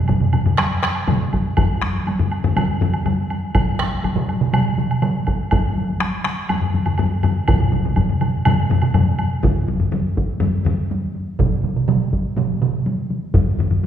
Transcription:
0.08 taiko medium
0.08 taiko low-mid medium
0.08 taiko mid medium
0.08 taiko high medium
0.08 high woodblock soft
0.21 taiko low-mid medium
0.21 taiko mid medium
0.21 taiko high soft
0.33 taiko low-mid medium
0.33 taiko mid medium
0.33 taiko high soft
0.33 high woodblock soft
0.46 taiko low-mid medium
0.46 taiko mid medium
0.46 taiko high soft
0.58 taiko rim medium
0.58 taiko high medium
0.58 high woodblock soft
0.71 taiko high soft
0.83 taiko rim medium
0.83 taiko high medium
0.95 taiko high soft
0.95 high woodblock soft
1.07 taiko low-mid loud
1.07 taiko mid loud
1.07 taiko high medium
1.07 high woodblock soft
1.21 taiko high soft
1.33 taiko medium
1.33 taiko high medium
1.33 high woodblock soft
1.57 taiko medium
1.57 taiko low-mid medium
1.57 taiko high medium
1.57 high woodblock soft
1.70 taiko high soft
1.82 taiko rim medium
1.82 taiko high medium
1.95 taiko high soft
2.07 taiko high medium
2.07 high woodblock soft
2.19 taiko low-mid medium
2.19 taiko high soft
2.31 taiko high medium
2.31 high woodblock soft
2.44 taiko low-mid loud
2.44 taiko high soft
2.56 taiko low-mid loud
2.56 taiko high medium
2.56 high woodblock medium
2.68 taiko high soft
2.81 taiko low-mid loud
2.81 taiko high medium
2.93 taiko high soft
2.93 high woodblock soft
3.05 taiko low-mid medium
3.05 taiko high medium
3.05 high woodblock soft
3.18 taiko high soft
3.30 taiko high medium
3.30 high woodblock soft
3.43 taiko high soft
3.55 taiko medium
3.55 taiko mid medium
3.55 taiko high medium
3.55 high woodblock soft
3.68 taiko high soft
3.79 taiko rim medium
3.79 taiko high medium
3.92 taiko high soft
4.04 taiko medium
4.04 taiko high medium
4.04 high woodblock soft
4.17 taiko mid loud
4.17 taiko high soft
4.29 taiko high medium
4.29 high woodblock soft
4.41 taiko mid medium
4.53 taiko mid loud
4.53 taiko high medium
4.53 high woodblock medium
4.66 taiko high soft
4.78 taiko mid medium
4.78 taiko high medium
4.91 taiko high soft
4.91 high woodblock soft
5.02 taiko mid loud
5.02 taiko high medium
5.02 high woodblock soft
5.15 taiko high soft
5.27 taiko medium
5.27 taiko high medium
5.27 high woodblock soft
5.39 taiko high soft
5.51 taiko medium
5.51 taiko high medium
5.51 high woodblock soft
5.65 taiko high soft
5.77 taiko high medium
5.89 taiko high medium
6.01 taiko rim medium
6.01 taiko high medium
6.01 high woodblock soft
6.14 taiko high soft
6.25 taiko rim medium
6.25 taiko high medium
6.25 high woodblock soft
6.38 taiko high soft
6.49 taiko low-mid medium
6.49 taiko high medium
6.49 high woodblock medium
6.61 taiko low-mid medium
6.61 taiko high soft
6.73 taiko low-mid medium
6.73 taiko high medium
6.86 taiko low-mid medium
6.86 taiko high soft
6.86 high woodblock soft
6.98 taiko low-mid medium
6.98 taiko high medium
6.98 high woodblock soft
7.11 taiko high soft
7.23 taiko low-mid medium
7.23 taiko high medium
7.23 high woodblock soft
7.48 taiko medium
7.48 taiko low-mid medium
7.48 taiko mid medium
7.48 taiko high medium
7.48 high woodblock medium
7.60 taiko low-mid medium
7.60 taiko mid medium
7.72 taiko low-mid medium
7.72 taiko mid medium
7.72 taiko high medium
7.85 taiko low-mid medium
7.85 taiko mid medium
7.96 taiko medium
7.96 taiko low-mid medium
7.96 taiko mid medium
7.96 taiko high medium
7.96 high woodblock soft
8.09 taiko low-mid medium
8.09 taiko mid medium
8.09 taiko high soft
8.21 taiko low-mid medium
8.21 taiko mid medium
8.21 taiko high medium
8.21 high woodblock soft
8.34 taiko high soft
8.45 taiko low-mid medium
8.45 taiko mid medium
8.45 taiko high medium
8.45 high woodblock medium
8.58 taiko high soft
8.70 taiko low-mid loud
8.70 taiko mid medium
8.70 taiko high medium
8.82 taiko low-mid medium
8.82 taiko mid medium
8.82 taiko high soft
8.82 high woodblock soft
8.94 taiko low-mid medium
8.94 taiko mid medium
8.94 taiko high medium
8.94 high woodblock soft
9.07 taiko high soft
9.19 taiko high medium
9.19 high woodblock soft
9.31 taiko high soft
9.43 taiko medium
9.43 taiko low-mid medium
9.43 taiko high medium
9.56 taiko high soft
9.68 taiko low-mid medium
9.68 taiko high medium
9.80 taiko low-mid medium
9.80 taiko high soft
9.92 taiko low-mid medium
9.92 taiko high medium
10.17 taiko medium
10.17 taiko high medium
10.30 taiko high soft
10.40 taiko low-mid loud
10.40 taiko high medium
10.54 taiko high soft
10.65 taiko low-mid loud
10.65 taiko high medium
10.79 taiko high soft
10.91 taiko high medium
11.03 taiko high soft
11.15 taiko high soft
11.28 taiko high soft
11.39 taiko medium
11.39 taiko mid medium
11.39 taiko high medium
11.52 taiko high soft
11.64 taiko mid medium
11.64 taiko high soft
11.76 taiko mid medium
11.89 taiko mid loud
11.89 taiko high medium
12.13 taiko medium
12.13 taiko high medium
12.26 taiko high soft
12.37 taiko mid medium
12.37 taiko high medium
12.50 taiko high soft
12.62 taiko mid loud
12.74 taiko high soft
12.86 taiko high medium
12.99 taiko high soft
13.10 taiko high medium
13.23 taiko high soft
13.34 taiko medium
13.34 taiko low-mid medium
13.34 taiko high medium
13.47 taiko high soft
13.59 taiko low-mid medium
13.59 taiko high medium
13.71 taiko low-mid medium
13.71 taiko high soft
13.83 taiko low-mid medium

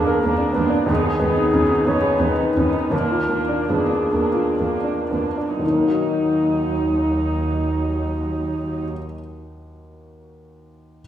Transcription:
0.00 0.86 D#2 soft
0.00 0.23 A#3 soft
0.00 0.25 A#3 soft
0.00 0.53 B3 soft
0.00 0.25 D4 soft
0.00 0.38 D4 soft
0.00 0.57 G#4 soft
0.00 0.07 A#4 soft
0.07 0.33 A#4 soft
0.23 0.33 D#2 soft
0.23 0.49 A#3 soft
0.23 0.56 A#3 soft
0.23 0.56 D4 soft
0.38 0.65 D4 soft
0.53 0.64 D#2 soft
0.53 0.71 B3 soft
0.57 0.89 A#3 soft
0.57 0.89 D4 soft
0.70 0.87 D4 soft
0.86 2.87 D#2 soft
0.86 0.97 D#2 soft
0.86 1.21 B3 soft
0.86 1.21 D#4 soft
0.91 1.89 G#4 medium
1.04 1.30 G#4 soft
1.20 1.29 D#2 soft
1.20 1.47 B3 soft
1.20 1.54 B3 soft
1.20 1.55 D#4 soft
1.36 1.63 D#4 soft
1.53 1.62 D#2 soft
1.53 1.88 B3 soft
1.53 1.70 C#4 soft
1.53 1.88 D#4 soft
1.70 1.97 D#4 soft
1.85 1.95 D#2 soft
1.85 2.13 B3 soft
1.85 2.24 C#5 medium
1.90 2.22 B3 soft
1.90 2.22 D#4 soft
2.01 2.30 G#4 soft
2.19 2.29 D#2 soft
2.19 2.48 B3 soft
2.19 2.56 D#4 soft
2.19 2.92 B4 soft
2.24 2.57 B3 soft
2.39 2.67 D#4 soft
2.56 2.64 D#2 soft
2.56 2.93 B3 soft
2.56 2.75 C#4 soft
2.56 2.93 D#4 soft
2.73 2.92 D#4 soft
2.91 2.99 D#2 soft
2.91 3.28 D#2 soft
2.91 3.30 A#3 soft
2.91 3.30 D4 soft
2.91 3.71 A#4 medium
3.10 3.41 F4 soft
3.28 3.36 D#2 soft
3.28 3.61 A#3 soft
3.28 3.70 A#3 soft
3.32 3.70 D4 soft
3.49 3.83 D4 soft
3.69 3.77 D#2 soft
3.69 4.13 A#3 soft
3.69 3.91 B3 soft
3.69 4.13 D4 soft
3.69 5.13 G#4 soft
3.90 4.26 D4 soft
4.13 4.21 D#2 soft
4.13 4.50 A#3 soft
4.13 4.60 A#3 soft
4.13 4.60 D4 soft
4.34 4.74 F4 soft
4.60 4.68 D#2 soft
4.60 5.01 A#3 soft
4.60 5.11 A#3 soft
4.60 5.12 D4 soft
4.84 5.28 D4 soft
5.11 5.21 D#2 soft
5.11 5.60 A#3 soft
5.11 5.38 B3 soft
5.11 5.61 D4 soft
5.37 5.61 D4 soft
5.59 8.85 D#2 soft
5.59 8.87 D#2 soft
5.59 8.88 F#3 soft
5.59 8.87 D#4 soft
5.59 8.88 D#4 soft
5.66 8.91 D#3 soft
5.73 8.98 A#3 soft
5.80 9.05 D#4 soft
5.88 9.13 F#4 soft
5.94 9.19 D#5 soft

